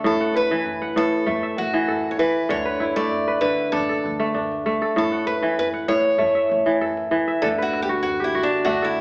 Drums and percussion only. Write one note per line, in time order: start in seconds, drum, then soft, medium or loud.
0.03 djembe bass medium
0.34 djembe slap medium
0.34 djembe tone medium
0.65 djembe slap soft
0.65 djembe bass medium
0.97 djembe slap soft
0.97 djembe tone medium
1.12 djembe slap medium
1.27 djembe slap soft
1.27 djembe bass medium
1.57 djembe tone medium
1.88 djembe bass medium
2.04 djembe slap medium
2.18 djembe tone medium
2.49 djembe bass medium
2.81 djembe slap medium
2.81 djembe tone medium
3.11 djembe slap soft
3.11 djembe bass medium
3.27 djembe slap soft
3.42 djembe slap soft
3.42 djembe tone medium
3.58 djembe slap medium
3.74 djembe slap soft
3.74 djembe bass medium
4.04 djembe tone medium
4.35 djembe bass medium
4.52 djembe slap soft
4.97 djembe bass medium
5.28 djembe tone medium
5.58 djembe bass medium
5.89 djembe slap soft
5.89 djembe tone medium
6.05 djembe slap soft
6.20 djembe slap soft
6.20 djembe bass medium
6.36 djembe slap soft
6.50 djembe tone medium
6.81 djembe bass medium
6.97 djembe slap soft
7.11 djembe slap soft
7.11 djembe tone medium
7.42 djembe bass medium
7.73 djembe slap medium
7.73 djembe tone medium
8.04 djembe bass medium
8.34 djembe slap soft
8.34 djembe tone medium
8.51 djembe slap medium
8.65 djembe slap soft
8.65 djembe bass medium
8.96 djembe tone medium